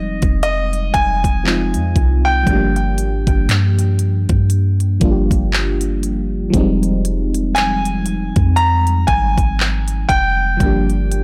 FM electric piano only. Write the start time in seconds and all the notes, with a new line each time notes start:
Already playing: F3 G3 G#3 C4 D#4
1.44 F3 G#3 C4 D#4
1.48 F4
2.43 F3 G3
2.48 A3 D4
2.53 A#3 G4
5.00 F3 G3 A#3 D4
5.05 F4
5.11 G4
6.50 F3 G#3
6.55 C4 D#4
6.59 G3
10.57 F3 G3
10.61 A#3 D4
10.66 G4